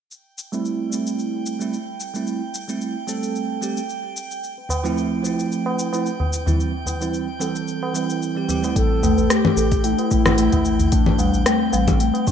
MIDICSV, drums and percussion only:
0, 0, Header, 1, 3, 480
1, 0, Start_track
1, 0, Key_signature, 0, "minor"
1, 0, Tempo, 540541
1, 98, Time_signature, 4, 2, 24, 8
1, 10937, End_track
2, 0, Start_track
2, 0, Title_t, "Tabla"
2, 4066, Note_on_c, 9, 63, 28
2, 4154, Note_off_c, 9, 63, 0
2, 4166, Note_on_c, 9, 64, 86
2, 4174, Note_on_c, 9, 60, 63
2, 4255, Note_off_c, 9, 64, 0
2, 4263, Note_off_c, 9, 60, 0
2, 4301, Note_on_c, 9, 63, 52
2, 4389, Note_off_c, 9, 63, 0
2, 4651, Note_on_c, 9, 63, 47
2, 4656, Note_on_c, 9, 60, 30
2, 4740, Note_off_c, 9, 63, 0
2, 4745, Note_off_c, 9, 60, 0
2, 5026, Note_on_c, 9, 60, 63
2, 5115, Note_off_c, 9, 60, 0
2, 5262, Note_on_c, 9, 60, 55
2, 5351, Note_off_c, 9, 60, 0
2, 5505, Note_on_c, 9, 60, 55
2, 5505, Note_on_c, 9, 64, 78
2, 5594, Note_off_c, 9, 60, 0
2, 5594, Note_off_c, 9, 64, 0
2, 5745, Note_on_c, 9, 64, 103
2, 5833, Note_off_c, 9, 64, 0
2, 6091, Note_on_c, 9, 64, 77
2, 6097, Note_on_c, 9, 60, 54
2, 6180, Note_off_c, 9, 64, 0
2, 6186, Note_off_c, 9, 60, 0
2, 6235, Note_on_c, 9, 63, 60
2, 6324, Note_off_c, 9, 63, 0
2, 6576, Note_on_c, 9, 63, 50
2, 6582, Note_on_c, 9, 60, 30
2, 6665, Note_off_c, 9, 63, 0
2, 6671, Note_off_c, 9, 60, 0
2, 6950, Note_on_c, 9, 60, 56
2, 7039, Note_off_c, 9, 60, 0
2, 7538, Note_on_c, 9, 64, 75
2, 7627, Note_off_c, 9, 64, 0
2, 7676, Note_on_c, 9, 60, 38
2, 7764, Note_off_c, 9, 60, 0
2, 7908, Note_on_c, 9, 63, 32
2, 7996, Note_off_c, 9, 63, 0
2, 8016, Note_on_c, 9, 64, 78
2, 8021, Note_on_c, 9, 60, 61
2, 8105, Note_off_c, 9, 64, 0
2, 8110, Note_off_c, 9, 60, 0
2, 8148, Note_on_c, 9, 63, 64
2, 8237, Note_off_c, 9, 63, 0
2, 8502, Note_on_c, 9, 60, 32
2, 8503, Note_on_c, 9, 63, 50
2, 8590, Note_off_c, 9, 60, 0
2, 8591, Note_off_c, 9, 63, 0
2, 8870, Note_on_c, 9, 60, 64
2, 8959, Note_off_c, 9, 60, 0
2, 9106, Note_on_c, 9, 60, 70
2, 9195, Note_off_c, 9, 60, 0
2, 9345, Note_on_c, 9, 64, 79
2, 9349, Note_on_c, 9, 60, 54
2, 9434, Note_off_c, 9, 64, 0
2, 9438, Note_off_c, 9, 60, 0
2, 9586, Note_on_c, 9, 64, 87
2, 9675, Note_off_c, 9, 64, 0
2, 9830, Note_on_c, 9, 63, 35
2, 9919, Note_off_c, 9, 63, 0
2, 9932, Note_on_c, 9, 60, 59
2, 9937, Note_on_c, 9, 64, 82
2, 10021, Note_off_c, 9, 60, 0
2, 10026, Note_off_c, 9, 64, 0
2, 10058, Note_on_c, 9, 63, 64
2, 10147, Note_off_c, 9, 63, 0
2, 10411, Note_on_c, 9, 60, 38
2, 10414, Note_on_c, 9, 63, 51
2, 10499, Note_off_c, 9, 60, 0
2, 10503, Note_off_c, 9, 63, 0
2, 10777, Note_on_c, 9, 60, 65
2, 10866, Note_off_c, 9, 60, 0
2, 10937, End_track
3, 0, Start_track
3, 0, Title_t, "Drums"
3, 101, Note_on_c, 9, 82, 27
3, 189, Note_off_c, 9, 82, 0
3, 339, Note_on_c, 9, 82, 68
3, 427, Note_off_c, 9, 82, 0
3, 470, Note_on_c, 9, 82, 35
3, 559, Note_off_c, 9, 82, 0
3, 580, Note_on_c, 9, 82, 27
3, 668, Note_off_c, 9, 82, 0
3, 821, Note_on_c, 9, 82, 68
3, 909, Note_off_c, 9, 82, 0
3, 948, Note_on_c, 9, 82, 41
3, 1037, Note_off_c, 9, 82, 0
3, 1059, Note_on_c, 9, 82, 26
3, 1148, Note_off_c, 9, 82, 0
3, 1298, Note_on_c, 9, 82, 67
3, 1387, Note_off_c, 9, 82, 0
3, 1428, Note_on_c, 9, 82, 38
3, 1517, Note_off_c, 9, 82, 0
3, 1539, Note_on_c, 9, 82, 27
3, 1628, Note_off_c, 9, 82, 0
3, 1777, Note_on_c, 9, 82, 68
3, 1866, Note_off_c, 9, 82, 0
3, 1907, Note_on_c, 9, 82, 37
3, 1996, Note_off_c, 9, 82, 0
3, 2017, Note_on_c, 9, 82, 32
3, 2106, Note_off_c, 9, 82, 0
3, 2259, Note_on_c, 9, 82, 73
3, 2348, Note_off_c, 9, 82, 0
3, 2387, Note_on_c, 9, 82, 39
3, 2475, Note_off_c, 9, 82, 0
3, 2497, Note_on_c, 9, 82, 30
3, 2586, Note_off_c, 9, 82, 0
3, 2737, Note_on_c, 9, 82, 72
3, 2826, Note_off_c, 9, 82, 0
3, 2869, Note_on_c, 9, 82, 42
3, 2957, Note_off_c, 9, 82, 0
3, 2980, Note_on_c, 9, 82, 29
3, 3068, Note_off_c, 9, 82, 0
3, 3218, Note_on_c, 9, 82, 70
3, 3307, Note_off_c, 9, 82, 0
3, 3349, Note_on_c, 9, 82, 41
3, 3438, Note_off_c, 9, 82, 0
3, 3458, Note_on_c, 9, 82, 29
3, 3547, Note_off_c, 9, 82, 0
3, 3699, Note_on_c, 9, 82, 70
3, 3787, Note_off_c, 9, 82, 0
3, 3828, Note_on_c, 9, 82, 44
3, 3917, Note_off_c, 9, 82, 0
3, 3939, Note_on_c, 9, 82, 31
3, 4028, Note_off_c, 9, 82, 0
3, 4178, Note_on_c, 9, 82, 74
3, 4267, Note_off_c, 9, 82, 0
3, 4308, Note_on_c, 9, 82, 39
3, 4397, Note_off_c, 9, 82, 0
3, 4420, Note_on_c, 9, 82, 30
3, 4509, Note_off_c, 9, 82, 0
3, 4659, Note_on_c, 9, 82, 76
3, 4748, Note_off_c, 9, 82, 0
3, 4791, Note_on_c, 9, 82, 46
3, 4880, Note_off_c, 9, 82, 0
3, 4902, Note_on_c, 9, 82, 32
3, 4990, Note_off_c, 9, 82, 0
3, 5142, Note_on_c, 9, 82, 71
3, 5231, Note_off_c, 9, 82, 0
3, 5271, Note_on_c, 9, 82, 42
3, 5360, Note_off_c, 9, 82, 0
3, 5382, Note_on_c, 9, 82, 32
3, 5471, Note_off_c, 9, 82, 0
3, 5621, Note_on_c, 9, 82, 79
3, 5709, Note_off_c, 9, 82, 0
3, 5751, Note_on_c, 9, 82, 44
3, 5840, Note_off_c, 9, 82, 0
3, 5863, Note_on_c, 9, 82, 33
3, 5952, Note_off_c, 9, 82, 0
3, 6101, Note_on_c, 9, 82, 77
3, 6190, Note_off_c, 9, 82, 0
3, 6230, Note_on_c, 9, 82, 38
3, 6319, Note_off_c, 9, 82, 0
3, 6339, Note_on_c, 9, 82, 30
3, 6428, Note_off_c, 9, 82, 0
3, 6580, Note_on_c, 9, 82, 76
3, 6669, Note_off_c, 9, 82, 0
3, 6710, Note_on_c, 9, 82, 44
3, 6798, Note_off_c, 9, 82, 0
3, 6819, Note_on_c, 9, 82, 31
3, 6908, Note_off_c, 9, 82, 0
3, 7060, Note_on_c, 9, 82, 76
3, 7149, Note_off_c, 9, 82, 0
3, 7191, Note_on_c, 9, 82, 43
3, 7279, Note_off_c, 9, 82, 0
3, 7303, Note_on_c, 9, 82, 29
3, 7391, Note_off_c, 9, 82, 0
3, 7541, Note_on_c, 9, 82, 76
3, 7630, Note_off_c, 9, 82, 0
3, 7670, Note_on_c, 9, 82, 44
3, 7759, Note_off_c, 9, 82, 0
3, 7779, Note_on_c, 9, 36, 103
3, 7781, Note_on_c, 9, 46, 66
3, 7782, Note_on_c, 9, 82, 30
3, 7868, Note_off_c, 9, 36, 0
3, 7869, Note_off_c, 9, 46, 0
3, 7871, Note_off_c, 9, 82, 0
3, 8022, Note_on_c, 9, 82, 74
3, 8111, Note_off_c, 9, 82, 0
3, 8152, Note_on_c, 9, 82, 38
3, 8241, Note_off_c, 9, 82, 0
3, 8261, Note_on_c, 9, 37, 72
3, 8261, Note_on_c, 9, 46, 64
3, 8262, Note_on_c, 9, 82, 30
3, 8349, Note_off_c, 9, 37, 0
3, 8349, Note_off_c, 9, 46, 0
3, 8351, Note_off_c, 9, 82, 0
3, 8390, Note_on_c, 9, 64, 72
3, 8479, Note_off_c, 9, 64, 0
3, 8500, Note_on_c, 9, 82, 73
3, 8589, Note_off_c, 9, 82, 0
3, 8627, Note_on_c, 9, 46, 42
3, 8629, Note_on_c, 9, 36, 102
3, 8629, Note_on_c, 9, 82, 42
3, 8716, Note_off_c, 9, 46, 0
3, 8717, Note_off_c, 9, 82, 0
3, 8718, Note_off_c, 9, 36, 0
3, 8737, Note_on_c, 9, 46, 59
3, 8739, Note_on_c, 9, 82, 30
3, 8826, Note_off_c, 9, 46, 0
3, 8828, Note_off_c, 9, 82, 0
3, 8866, Note_on_c, 9, 46, 30
3, 8955, Note_off_c, 9, 46, 0
3, 8979, Note_on_c, 9, 82, 72
3, 8980, Note_on_c, 9, 36, 95
3, 9068, Note_off_c, 9, 82, 0
3, 9069, Note_off_c, 9, 36, 0
3, 9107, Note_on_c, 9, 37, 80
3, 9107, Note_on_c, 9, 64, 77
3, 9109, Note_on_c, 9, 82, 44
3, 9196, Note_off_c, 9, 37, 0
3, 9196, Note_off_c, 9, 64, 0
3, 9198, Note_off_c, 9, 82, 0
3, 9216, Note_on_c, 9, 46, 64
3, 9218, Note_on_c, 9, 82, 29
3, 9305, Note_off_c, 9, 46, 0
3, 9307, Note_off_c, 9, 82, 0
3, 9345, Note_on_c, 9, 46, 42
3, 9350, Note_on_c, 9, 36, 55
3, 9434, Note_off_c, 9, 46, 0
3, 9439, Note_off_c, 9, 36, 0
3, 9458, Note_on_c, 9, 82, 70
3, 9547, Note_off_c, 9, 82, 0
3, 9586, Note_on_c, 9, 46, 30
3, 9588, Note_on_c, 9, 82, 43
3, 9675, Note_off_c, 9, 46, 0
3, 9677, Note_off_c, 9, 82, 0
3, 9697, Note_on_c, 9, 46, 63
3, 9698, Note_on_c, 9, 82, 32
3, 9701, Note_on_c, 9, 36, 116
3, 9785, Note_off_c, 9, 46, 0
3, 9787, Note_off_c, 9, 82, 0
3, 9790, Note_off_c, 9, 36, 0
3, 9824, Note_on_c, 9, 64, 68
3, 9913, Note_off_c, 9, 64, 0
3, 9936, Note_on_c, 9, 82, 74
3, 10025, Note_off_c, 9, 82, 0
3, 10069, Note_on_c, 9, 82, 43
3, 10158, Note_off_c, 9, 82, 0
3, 10176, Note_on_c, 9, 37, 76
3, 10176, Note_on_c, 9, 46, 65
3, 10178, Note_on_c, 9, 82, 30
3, 10265, Note_off_c, 9, 37, 0
3, 10265, Note_off_c, 9, 46, 0
3, 10267, Note_off_c, 9, 82, 0
3, 10417, Note_on_c, 9, 82, 77
3, 10506, Note_off_c, 9, 82, 0
3, 10546, Note_on_c, 9, 46, 42
3, 10546, Note_on_c, 9, 64, 75
3, 10548, Note_on_c, 9, 82, 44
3, 10549, Note_on_c, 9, 36, 96
3, 10635, Note_off_c, 9, 46, 0
3, 10635, Note_off_c, 9, 64, 0
3, 10636, Note_off_c, 9, 82, 0
3, 10638, Note_off_c, 9, 36, 0
3, 10657, Note_on_c, 9, 46, 59
3, 10658, Note_on_c, 9, 82, 30
3, 10745, Note_off_c, 9, 46, 0
3, 10747, Note_off_c, 9, 82, 0
3, 10787, Note_on_c, 9, 46, 31
3, 10876, Note_off_c, 9, 46, 0
3, 10898, Note_on_c, 9, 36, 101
3, 10898, Note_on_c, 9, 82, 72
3, 10937, Note_off_c, 9, 36, 0
3, 10937, Note_off_c, 9, 82, 0
3, 10937, End_track
0, 0, End_of_file